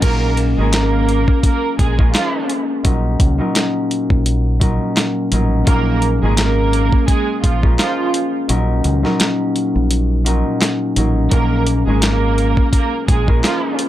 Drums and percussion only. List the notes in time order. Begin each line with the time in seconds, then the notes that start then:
0.02 kick, closed hi-hat, crash
0.37 closed hi-hat
0.73 snare, clap, closed hi-hat
1.09 closed hi-hat
1.28 kick
1.43 kick, closed hi-hat
1.79 kick, closed hi-hat
1.99 kick
2.14 snare, clap, closed hi-hat
2.49 closed hi-hat
2.85 kick, closed hi-hat
3.20 kick, closed hi-hat
3.55 snare, clap, closed hi-hat
3.91 closed hi-hat
4.10 kick
4.26 closed hi-hat
4.61 kick, closed hi-hat
4.97 snare, clap, closed hi-hat
5.32 closed hi-hat
5.67 kick, closed hi-hat
6.02 closed hi-hat
6.37 snare, clap, closed hi-hat
6.73 closed hi-hat
6.92 kick
7.08 kick, closed hi-hat
7.44 kick, closed hi-hat
7.63 kick
7.79 snare, clap, closed hi-hat
8.14 closed hi-hat
8.49 closed hi-hat
8.84 closed hi-hat
9.05 snare
9.20 snare, clap, closed hi-hat
9.56 closed hi-hat
9.91 closed hi-hat
10.26 closed hi-hat
10.61 snare, clap, closed hi-hat
10.96 closed hi-hat
11.31 kick, closed hi-hat
11.67 closed hi-hat
12.02 snare, clap, closed hi-hat
12.38 closed hi-hat
12.57 kick
12.73 kick, closed hi-hat
13.08 kick, closed hi-hat
13.28 kick
13.44 snare, clap, closed hi-hat
13.79 closed hi-hat